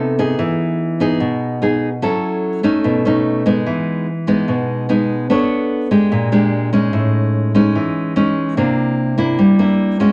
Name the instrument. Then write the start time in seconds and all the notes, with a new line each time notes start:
nylon-string guitar
Already playing: C3 B3 D#4 A4
0.19 B3 D#4 G#4
0.39 E3
1.00 B3 D#4 G#4
1.20 B2
1.62 B3 D#4 G#4
2.02 F#3 C#4 E4 A4
2.63 A3 C#4 D#4
2.84 B2
3.05 A3 C#4 D#4
3.46 G#3 B3 D#4
3.66 E3
4.27 G#3 B3 D#4
4.48 B2
4.89 G#3 B3 D#4
5.30 B3 D4 A4 C#5
5.91 G#3 D4 G4
6.12 A#2
6.32 G#3 D4 G4
6.73 G#3 C#4 D#4
6.93 A2
7.55 G#3 C#4 D#4
7.75 E3
8.16 G#3 C#4 D#4
8.57 C3 A#3 D4 E4
9.18 A#3 D4 E4
9.39 G3
9.59 A#3 D4 E4
10.00 G#3 C#4 F#4